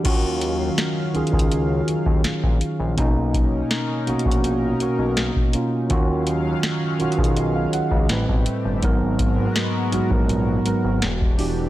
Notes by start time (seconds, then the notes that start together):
0.04 D#2 D#3 F#3 C#4 F4 F#4 F5, kick, closed hi-hat, crash
0.41 closed hi-hat
0.78 snare, closed hi-hat
1.13 C#2 D#3 C#4 F4 G#4, closed hi-hat
1.27 closed hi-hat
1.32 C#2 D#3 C#4 F4 G#4, kick
1.39 closed hi-hat
1.52 closed hi-hat
1.88 D#2, closed hi-hat
2.06 D#2, kick
2.24 A#1, snare, closed hi-hat
2.43 A#1, kick
2.61 closed hi-hat
2.79 A#1
2.96 B1 B2 A#3 C#4 D#4 A#4, kick, closed hi-hat
3.34 kick, closed hi-hat
3.71 snare, closed hi-hat
4.06 A#1 B2 A#3 C#4 F#4, closed hi-hat
4.19 closed hi-hat
4.25 A#1 A#3 B3 C#4 F#4, kick
4.31 closed hi-hat
4.44 closed hi-hat
4.80 B1 B2 A#3 C#4 F#4, closed hi-hat
4.99 B1
5.17 snare, closed hi-hat
5.36 kick
5.53 B2 A#3 C#4 F4, closed hi-hat
5.89 D#2 D#3 F#3 C#4 F4 F#4 F5, kick, closed hi-hat
6.27 closed hi-hat
6.63 snare, closed hi-hat
6.99 B1 D#3 C#4 F4 F#4, closed hi-hat
7.12 closed hi-hat
7.17 B1 D#3 C#4 F4 G#4, kick
7.24 closed hi-hat
7.37 D#5, closed hi-hat
7.55 F5
7.73 C#2 F#5, closed hi-hat
7.91 C#2 D#5, kick
8.09 A1 A2 G3 A3 C4 G4 B4, snare, closed hi-hat
8.28 B1, kick
8.46 closed hi-hat
8.65 G1
8.82 G#1 G#2 F#3 G#3 B3 F#4 A#4, kick, closed hi-hat
9.19 kick, closed hi-hat
9.56 snare, closed hi-hat
9.91 A#1 G#2 F#3 B3 F#4, closed hi-hat
10.09 A#1 G#2 F#3 B3 A#4, kick
10.29 closed hi-hat
10.64 G#1 G#2 F#3 B3 A#4, closed hi-hat
10.84 G#1
11.02 E1 E3 D4 G4, snare, closed hi-hat
11.21 kick
11.38 E3 D4 F#4 G4, open hi-hat